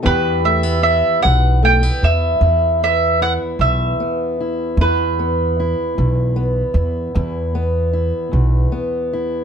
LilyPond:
<<
  \new Staff \with { instrumentName = "Mandolin" } { \time 12/8 \key e \minor \tempo 4. = 51 b'8 e''8 e''8 fis''8 g''8 e''4 e''8 fis''8 e''4. | b'4. r1 r8 | }
  \new Staff \with { instrumentName = "Steel-string acoustic guitar" } { \time 12/8 \key e \minor << { <e b e' g'>8 a16 b16 e'4 a16 b16 e'8 e'8 b8 e'4 b8 e'8 | e'8 b8 e'4 b8 e'8 e'8 b8 e'4 b8 e'8 | } \\ { e,4. e,4. e,4. e,4. | e,4. e,4. e,4. e,4. | } >> }
  \new Staff \with { instrumentName = "Upright bass" } { \clef bass \time 12/8 \key e \minor e,4. b,,4 e,8 e,4. b,,8 r4 | e,4. b,,4 e,8 e,4. b,,8 r4 | }
>>